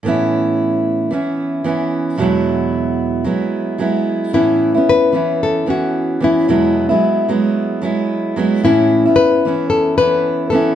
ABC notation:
X:1
M:4/4
L:1/16
Q:"Swing 16ths" 1/4=112
K:A
V:1 name="Nylon-string guitar"
z16 | z16 | E4 B4 A2 F4 E2- | E2 z12 z2 |
E4 B4 A2 B4 A2 |]
V:2 name="Steel-string acoustic guitar"
[A,,E,B,CE]8 [E,B,CE]4 [E,B,CE]4 | [E,,B,,F,G,B,E]8 [F,G,B,E]4 [F,G,B,E]4 | [A,,E,B,CE]3 [B,CE]3 [E,B,CE]4 [E,B,CE]4 [E,B,CE]2 | [E,,B,,F,G,B,E]3 [F,G,B,E]3 [F,G,B,E]4 [F,G,B,E]4 [F,G,B,E]2 |
[A,,E,B,CE]3 [B,CE]3 [E,B,CE]4 [E,B,CE]4 [E,B,CE]2 |]